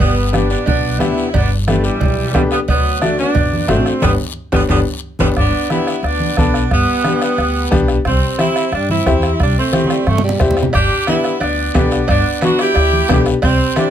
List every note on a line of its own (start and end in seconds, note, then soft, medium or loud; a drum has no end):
0.00 0.53 G1 medium
0.00 0.31 G3 medium
0.00 0.31 B3 loud
0.00 bombo low medium
0.00 low conga medium
0.32 0.56 B3 medium
0.32 0.49 B3 medium
0.32 0.57 D4 medium
0.32 0.48 D4 medium
0.32 0.57 G4 medium
0.32 bombo rim medium
0.32 high conga medium
0.32 short guiro medium
0.50 0.66 B3 medium
0.50 0.65 D4 medium
0.50 short guiro medium
0.66 1.00 B1 medium
0.66 0.98 B3 medium
0.66 0.98 D4 loud
0.66 bombo low medium
0.66 cowbell medium
0.66 low conga medium
0.66 long guiro medium
0.99 1.14 D2 medium
0.99 1.29 B3 medium
0.99 1.23 B3 medium
0.99 1.24 D4 medium
0.99 1.27 E4 medium
0.99 1.24 G4 medium
0.99 bombo rim medium
0.99 high conga medium
0.99 low conga medium
0.99 short guiro medium
1.18 short guiro medium
1.28 1.33 E4 medium
1.33 1.88 G1 loud
1.33 1.51 B3 medium
1.33 1.50 D4 loud
1.33 bombo low medium
1.33 cowbell loud
1.33 low conga medium
1.33 long guiro medium
1.67 1.84 D3 medium
1.67 1.83 A3 medium
1.67 1.91 B3 medium
1.67 1.91 D4 medium
1.67 1.91 G4 medium
1.67 bombo rim medium
1.67 high conga medium
1.67 short guiro medium
1.83 2.35 E3 medium
1.83 2.33 G3 loud
1.83 short guiro medium
2.01 2.34 B1 medium
2.01 bombo low medium
2.01 cowbell medium
2.01 low conga medium
2.01 long guiro medium
2.34 2.48 D2 medium
2.34 2.42 D3 medium
2.34 2.42 G3 medium
2.34 2.58 B3 medium
2.34 2.58 D4 medium
2.34 2.58 G4 medium
2.34 bombo low medium
2.34 bombo rim medium
2.34 high conga medium
2.34 low conga medium
2.34 low timbale medium
2.34 short guiro medium
2.51 2.59 G3 medium
2.51 2.59 B3 medium
2.51 bombo rim medium
2.51 short guiro medium
2.68 3.22 D2 loud
2.68 3.00 F#3 medium
2.68 3.00 B3 loud
2.68 bombo low medium
2.68 cowbell medium
2.68 low conga medium
2.68 long guiro medium
3.01 3.25 A3 medium
3.01 3.18 A3 medium
3.01 3.25 D4 medium
3.01 3.17 D4 loud
3.01 3.25 F#4 medium
3.01 bombo rim medium
3.01 high conga medium
3.01 short guiro medium
3.18 3.66 B3 medium
3.18 3.65 D4 loud
3.18 short guiro medium
3.35 3.70 F#2 loud
3.35 bombo low medium
3.35 cowbell medium
3.35 low conga medium
3.35 long guiro medium
3.53 high conga medium
3.68 3.82 A1 medium
3.68 3.92 A3 medium
3.68 4.00 A3 medium
3.68 4.00 C4 medium
3.68 3.92 D4 medium
3.68 3.92 F#4 medium
3.68 bombo rim medium
3.68 high conga medium
3.68 low conga medium
3.68 low timbale medium
3.68 short guiro medium
3.86 bombo rim medium
3.86 short guiro medium
4.02 4.15 G1 loud
4.02 4.10 D3 loud
4.02 4.11 G3 loud
4.02 4.13 B3 loud
4.02 4.11 B3 loud
4.02 4.13 D4 medium
4.02 4.13 G4 loud
4.02 bombo low medium
4.02 high conga loud
4.02 high timbale medium
4.02 long guiro loud
4.52 4.65 G1 medium
4.52 4.61 D3 loud
4.52 4.61 G3 loud
4.52 4.63 B3 medium
4.52 4.61 B3 loud
4.52 4.63 D4 loud
4.52 4.63 G4 loud
4.52 bombo low loud
4.52 high conga medium
4.52 high timbale loud
4.52 long guiro loud
4.69 4.82 G1 medium
4.69 4.77 D3 loud
4.69 4.78 G3 medium
4.69 4.80 B3 medium
4.69 4.78 B3 medium
4.69 4.80 D4 loud
4.69 4.80 G4 medium
4.69 bombo low loud
4.69 high conga loud
4.69 high timbale loud
4.69 long guiro medium
5.19 5.32 G1 loud
5.19 5.28 D3 loud
5.19 5.28 G3 loud
5.19 5.28 B3 loud
5.19 5.31 B3 medium
5.19 5.31 D4 medium
5.19 5.31 G4 medium
5.19 bombo low medium
5.19 high conga loud
5.19 high timbale loud
5.19 long guiro medium
5.36 5.50 G1 medium
5.36 5.69 B3 medium
5.36 5.68 D4 loud
5.36 bombo low medium
5.36 bombo rim medium
5.36 long guiro medium
5.70 5.94 B3 medium
5.70 6.02 B3 medium
5.70 5.94 D4 medium
5.70 6.01 E4 loud
5.70 5.94 G4 medium
5.70 bombo rim medium
5.70 high conga medium
5.70 short guiro medium
5.87 bombo rim medium
5.87 short guiro medium
6.03 6.30 D2 medium
6.03 6.37 B3 medium
6.03 6.37 D4 loud
6.03 bombo rim medium
6.03 long guiro medium
6.20 high conga medium
6.37 6.64 B1 medium
6.37 6.61 B3 medium
6.37 6.69 B3 medium
6.37 6.69 D4 medium
6.37 6.61 D4 medium
6.37 6.61 A4 medium
6.37 bombo low medium
6.37 bombo rim medium
6.37 high conga medium
6.37 short guiro medium
6.54 bombo rim medium
6.54 short guiro medium
6.71 6.84 G1 medium
6.71 7.19 G3 medium
6.71 7.18 B3 loud
6.71 bombo low medium
6.71 bombo rim medium
6.71 long guiro medium
7.04 7.28 B3 medium
7.04 7.28 D4 medium
7.04 7.28 G4 medium
7.04 bombo rim medium
7.04 high conga medium
7.04 short guiro medium
7.22 7.85 G3 medium
7.22 7.85 B3 loud
7.22 bombo rim medium
7.22 short guiro medium
7.38 7.65 D2 medium
7.38 bombo rim medium
7.38 long guiro medium
7.71 7.99 B1 medium
7.71 7.95 B3 medium
7.71 7.95 D4 medium
7.71 7.95 G4 loud
7.71 bombo low medium
7.71 bombo rim medium
7.71 high conga medium
7.71 low conga medium
7.71 short guiro medium
7.88 bombo rim medium
7.88 short guiro medium
8.05 8.19 C2 loud
8.05 8.37 G3 medium
8.05 8.37 C4 loud
8.05 bombo low medium
8.05 bombo rim medium
8.05 long guiro medium
8.38 8.62 C4 medium
8.38 8.70 C4 medium
8.38 8.62 E4 medium
8.38 8.70 E4 loud
8.38 8.62 G4 medium
8.38 bombo rim medium
8.38 high conga medium
8.38 short guiro medium
8.56 bombo rim medium
8.56 short guiro medium
8.72 8.99 G2 medium
8.72 8.90 G3 medium
8.72 8.90 D4 medium
8.72 bombo rim medium
8.72 long guiro medium
8.89 9.37 C4 medium
8.89 9.37 E4 loud
8.89 high conga medium
9.06 9.33 E2 medium
9.06 9.30 C4 medium
9.06 9.30 E4 medium
9.06 9.30 G4 medium
9.06 bombo low medium
9.06 bombo rim medium
9.06 high conga medium
9.06 short guiro medium
9.22 bombo rim medium
9.22 short guiro medium
9.40 9.53 C2 loud
9.40 9.58 G3 medium
9.40 9.57 D4 loud
9.40 bombo low medium
9.40 bombo rim medium
9.40 long guiro medium
9.58 10.21 A3 medium
9.58 10.21 C4 medium
9.72 9.96 C4 medium
9.72 9.97 E4 medium
9.72 9.97 G4 medium
9.72 bombo rim medium
9.72 high conga loud
9.72 short guiro medium
9.84 9.92 F#3 medium
9.84 high conga medium
9.90 10.10 G3 medium
9.90 bombo rim medium
9.90 short guiro medium
10.06 10.34 G2 medium
10.06 10.23 A3 loud
10.06 bombo rim medium
10.06 high conga medium
10.06 long guiro medium
10.18 low conga loud
10.24 10.39 G3 medium
10.29 low conga medium
10.40 10.67 E2 medium
10.40 10.64 G3 medium
10.40 10.64 C4 medium
10.40 10.64 E4 medium
10.40 10.64 G4 loud
10.40 bombo low medium
10.40 bombo rim medium
10.40 low conga medium
10.40 short guiro medium
10.51 low conga medium
10.57 bombo rim medium
10.57 short guiro medium
10.63 low conga loud
10.73 10.87 G1 loud
10.73 11.06 D4 loud
10.73 11.05 G4 loud
10.73 bombo low medium
10.73 bombo rim medium
10.73 cowbell loud
10.73 long guiro medium
11.07 11.31 B3 medium
11.07 11.40 B3 medium
11.07 11.31 D4 medium
11.07 11.39 E4 loud
11.07 11.32 G4 medium
11.07 bombo rim medium
11.07 cowbell medium
11.07 high conga medium
11.07 short guiro medium
11.24 bombo rim medium
11.24 short guiro medium
11.40 11.68 D2 medium
11.40 11.73 B3 medium
11.40 11.72 D4 loud
11.40 bombo rim medium
11.40 cowbell medium
11.40 long guiro medium
11.74 12.02 B1 medium
11.74 11.98 B3 medium
11.74 12.07 B3 medium
11.74 11.98 D4 medium
11.74 12.07 D4 medium
11.74 11.98 G4 medium
11.74 bombo low medium
11.74 bombo rim medium
11.74 cowbell medium
11.74 high conga medium
11.74 low timbale medium
11.74 short guiro medium
11.91 bombo rim medium
11.91 short guiro medium
12.08 12.22 G1 loud
12.08 12.40 B3 medium
12.08 12.40 D4 loud
12.08 bombo low medium
12.08 bombo rim medium
12.08 cowbell loud
12.08 long guiro medium
12.41 12.65 B3 medium
12.41 12.66 D4 medium
12.41 12.60 D4 medium
12.41 12.66 F#4 medium
12.41 12.60 F#4 loud
12.41 bombo rim medium
12.41 cowbell medium
12.41 high conga medium
12.41 short guiro medium
12.59 13.23 E4 medium
12.59 13.23 G4 loud
12.59 bombo rim medium
12.59 short guiro medium
12.75 13.02 D2 loud
12.75 bombo rim medium
12.75 cowbell medium
12.75 long guiro medium
12.93 high conga medium
13.09 13.36 B1 medium
13.09 13.32 B3 medium
13.09 13.33 D4 medium
13.09 13.33 G4 loud
13.09 bombo low medium
13.09 bombo rim medium
13.09 cowbell medium
13.09 high conga medium
13.09 low conga medium
13.09 low timbale medium
13.09 short guiro medium
13.26 bombo rim medium
13.26 short guiro medium
13.42 13.56 C2 loud
13.42 13.75 G3 medium
13.42 13.74 C4 loud
13.42 bombo low medium
13.42 bombo rim medium
13.42 cowbell loud
13.42 long guiro medium
13.76 13.90 G3 medium
13.76 13.90 C4 medium
13.76 13.90 D4 loud
13.76 13.90 E4 medium
13.76 13.90 G4 medium
13.76 bombo rim medium
13.76 cowbell medium
13.76 high conga medium
13.76 short guiro medium